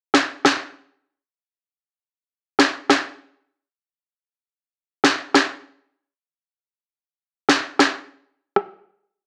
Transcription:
0.14 cross-stick medium
0.14 snare loud
0.45 cross-stick loud
0.45 snare loud
2.59 cross-stick medium
2.59 snare loud
2.90 cross-stick loud
2.90 snare loud
5.04 cross-stick medium
5.04 snare loud
5.34 cross-stick loud
5.34 snare loud
7.49 cross-stick medium
7.49 snare loud
7.79 cross-stick loud
7.79 snare loud
8.56 cross-stick medium

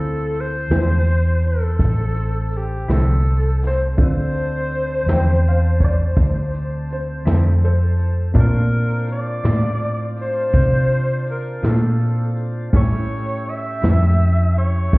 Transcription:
0.00 0.67 D2 medium
0.00 3.93 C4 soft
0.00 3.94 C4 medium
0.00 3.93 E4 soft
0.00 3.93 F4 soft
0.00 0.42 A4 loud
0.00 3.94 A4 medium
0.34 closed hi-hat soft
0.40 1.46 C5 loud
0.70 1.76 E2 medium
0.70 0.93 D3 soft
0.70 0.93 F3 soft
0.70 0.93 C4 soft
0.70 0.93 E4 soft
0.70 snare medium
0.70 closed hi-hat medium
1.07 closed hi-hat medium
1.43 closed hi-hat soft
1.47 2.59 A4 medium
1.79 2.85 A1 medium
1.79 kick medium
1.79 snare soft
1.79 closed hi-hat medium
2.15 closed hi-hat medium
2.52 closed hi-hat soft
2.57 2.91 G4 medium
2.88 3.95 C2 medium
2.88 3.11 D3 soft
2.88 3.11 F3 soft
2.88 3.11 C4 medium
2.88 3.10 E4 medium
2.88 snare loud
2.88 closed hi-hat medium
2.93 3.59 A4 medium
3.26 closed hi-hat medium
3.62 snare soft
3.62 closed hi-hat medium
3.67 3.82 C5 medium
3.97 5.04 D2 medium
3.97 8.30 C4 soft
3.97 8.32 C4 medium
3.97 8.31 D4 soft
3.97 8.31 F4 soft
3.97 8.31 A4 soft
3.97 8.32 A4 medium
3.97 kick loud
3.97 closed hi-hat medium
4.02 6.87 C5 medium
4.34 closed hi-hat medium
4.71 closed hi-hat medium
5.06 6.12 E2 medium
5.06 5.30 F3 medium
5.06 5.30 C4 medium
5.06 5.29 E4 medium
5.06 snare loud
5.06 closed hi-hat medium
5.10 5.30 D3 soft
5.10 5.44 G5 medium
5.44 closed hi-hat medium
5.48 5.81 F5 medium
5.80 5.84 C#5 soft
5.80 kick medium
5.80 closed hi-hat medium
5.84 6.88 D5 medium
6.17 7.23 D2 medium
6.17 kick loud
6.17 closed hi-hat medium
6.53 closed hi-hat medium
6.90 7.26 C5 medium
6.90 closed hi-hat soft
7.25 8.32 F2 medium
7.25 7.48 D3 medium
7.25 7.48 F3 medium
7.25 7.48 C4 medium
7.25 7.47 E4 medium
7.25 7.62 A4 medium
7.25 snare loud
7.25 closed hi-hat medium
7.63 8.14 A4 medium
7.63 8.16 C5 medium
7.63 closed hi-hat medium
7.99 closed hi-hat soft
8.33 8.56 A#2 medium
8.33 9.41 A#2 medium
8.33 8.57 A3 medium
8.33 12.69 C4 soft
8.33 12.70 C4 medium
8.33 12.69 D4 soft
8.33 8.57 D4 medium
8.33 12.70 D4 medium
8.33 12.70 F4 soft
8.33 8.57 F4 medium
8.33 12.70 F4 medium
8.33 12.70 A5 soft
8.33 12.70 A5 medium
8.33 kick medium
8.33 closed hi-hat medium
8.40 9.06 A#4 medium
8.71 closed hi-hat medium
9.07 closed hi-hat medium
9.12 10.16 D5 loud
9.44 10.51 A2 medium
9.44 9.67 A#2 soft
9.44 9.67 A3 soft
9.44 9.66 D4 soft
9.44 9.66 F4 medium
9.44 snare loud
9.44 closed hi-hat medium
9.81 closed hi-hat medium
10.17 closed hi-hat soft
10.22 11.25 C5 medium
10.53 11.60 C3 medium
10.53 kick medium
10.53 closed hi-hat medium
10.90 closed hi-hat medium
11.26 closed hi-hat soft
11.31 11.68 A#4 medium
11.63 12.70 A#2 medium
11.63 11.86 A#2 soft
11.63 11.86 A3 soft
11.63 11.86 D4 soft
11.63 11.85 F4 medium
11.63 12.38 A4 medium
11.63 snare medium
11.63 closed hi-hat medium
12.00 closed hi-hat medium
12.36 closed hi-hat medium
12.73 12.95 A2 medium
12.73 13.80 A2 medium
12.73 12.96 G3 medium
12.73 14.98 C#4 soft
12.73 14.98 C#4 medium
12.73 12.96 C#4 medium
12.73 14.98 E4 medium
12.73 14.98 E4 soft
12.73 12.96 E4 medium
12.73 14.98 G4 soft
12.73 14.98 G4 medium
12.73 14.98 A4 medium
12.73 14.98 A4 soft
12.73 13.51 C#5 medium
12.73 kick medium
12.73 closed hi-hat medium
13.10 closed hi-hat medium
13.47 14.57 E5 loud
13.47 closed hi-hat medium
13.82 14.90 F2 medium
13.82 14.05 A2 soft
13.82 14.05 G3 soft
13.82 14.05 C#4 medium
13.82 14.04 E4 soft
13.82 snare medium
13.82 closed hi-hat medium
14.20 closed hi-hat medium
14.56 14.98 C#5 loud
14.56 closed hi-hat soft
14.93 14.98 E2 medium
14.93 kick loud
14.93 snare soft
14.93 closed hi-hat medium

